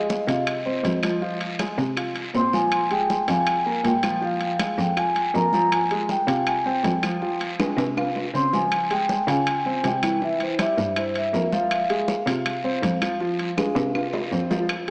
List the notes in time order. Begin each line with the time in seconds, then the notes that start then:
Already playing: F2 G#3 G#4 D#5
0.09 high conga, short guiro
0.28 C3 F4 F5, high conga, high timbale, short guiro
0.47 high conga, high timbale, long guiro, claves
0.66 C4 C5, high conga
0.84 F2, high conga, high timbale, low timbale, short guiro
1.03 F3 F4, high conga, high timbale, short guiro, claves
1.21 F3 F4, high conga, long guiro
1.41 high conga, high timbale
1.59 G#3 G#4, high conga, high timbale, short guiro, claves
1.78 C3, high conga, short guiro
1.97 F4 F5, high conga, high timbale, long guiro, claves
2.16 high conga, high timbale
2.34 A#2 C4 C5 C6, high conga, low timbale, short guiro
2.53 F3 F4 G#5, high conga, short guiro
2.72 high conga, high timbale, long guiro, claves
2.91 G#3 G#4 G5, high conga, high timbale
3.10 high conga, short guiro
3.28 F2 F4 F5 G#5, high conga, high timbale, short guiro
3.47 high conga, high timbale, long guiro, claves
3.66 A#3 A#4, high conga
3.84 A#2 G5, high conga, high timbale, low timbale, short guiro
4.03 F3 F4, high conga, high timbale, short guiro, claves
4.22 F3 F4 F5, high conga, long guiro
4.41 high conga, high timbale
4.59 G#3 G#4, high conga, high timbale, short guiro, claves
4.78 F2 G5, high conga, short guiro
4.97 F4 F5 G#5, high conga, high timbale, long guiro, claves
5.16 high conga, high timbale
5.34 F2 A#3 A#4 A#5, high conga, low timbale, short guiro
5.53 F3 F4, high conga, short guiro
5.72 G#5, high conga, high timbale, long guiro, claves
5.91 G#3 G#4, high conga, high timbale
6.09 G5, high conga, short guiro
6.28 C3 F4 F5, high conga, high timbale, short guiro
6.47 G#5, high conga, high timbale, long guiro, claves
6.65 C4 C5 G5, high conga
6.84 F2, high conga, high timbale, low timbale, short guiro
7.03 F3 F4, high conga, high timbale, short guiro, claves
7.22 F3 F4, high conga, long guiro
7.41 high conga, high timbale
7.59 G#3 G#4, high conga, high timbale, short guiro, claves
7.77 C3, high conga, high timbale, short guiro
7.97 F4 F5, high conga, high timbale, long guiro, claves
8.16 high conga, low timbale
8.34 C#3 C4 C5 C6, high conga, short guiro
8.53 F3 F4 G#5, high conga, low timbale, short guiro
8.72 high conga, high timbale, long guiro, claves
8.90 G#3 G#4 G5, high conga, high timbale
9.09 high conga, short guiro
9.28 C#3 F4 F5 G#5, high conga, high timbale, short guiro
9.47 high conga, high timbale, long guiro, claves
9.65 C4 C5, high conga
9.84 C3 G5, high conga, high timbale, low timbale, short guiro
10.03 E3 E4, high conga, high timbale, short guiro, claves
10.22 E3 E4 E5, high conga, long guiro
10.40 C5, high conga, high timbale
10.59 G3 G4 E5, high conga, high timbale, short guiro, claves
10.77 G2, high conga, short guiro
10.96 E4 C5 E5, high conga, high timbale, long guiro, claves
11.15 E5, high conga, high timbale
11.33 F2 A#3 A#4, high conga, low timbale, short guiro
11.52 F3 F4 F5, high conga, short guiro
11.71 high conga, high timbale, long guiro, claves
11.90 G#3 G#4, high conga, high timbale
12.08 high conga, short guiro
12.27 C3 F4 F5, high conga, high timbale, short guiro
12.46 high conga, high timbale, long guiro, claves
12.64 C4 C5, high conga
12.83 F2, high conga, high timbale, short guiro
13.02 F3 F4, high conga, high timbale, short guiro, claves
13.20 F3 F4, high conga, long guiro
13.39 high conga, high timbale
13.58 G#3 G#4, high conga, high timbale, short guiro, claves
13.76 C3, high conga, high timbale, short guiro
13.95 F4 F5, high conga, high timbale, long guiro, claves
14.13 high conga, low timbale
14.32 F2 C4 C5, high conga, short guiro
14.50 F3 F4, high conga, low timbale, short guiro
14.69 high conga, high timbale, claves